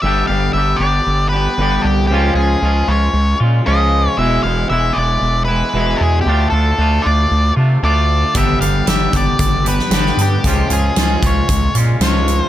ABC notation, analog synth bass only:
X:1
M:4/4
L:1/8
Q:1/4=115
K:Gmix
V:1 name="Analog synth bass" clef=bass
G,,, G,,, G,,, G,,, G,,,2 G,,, C,, | ^C,, C,, C,, C,, C,, _B,, C,,2 | E,,, E,,, E,,, E,,, E,,,2 E,,, E,, | D,, D,, D,, D,, D,, C, D,,2 |
G,,, G,,, G,,, G,,, G,,,2 G,,, G,, | ^C,, C,, C,, C,, C,, _B,, C,,2 |]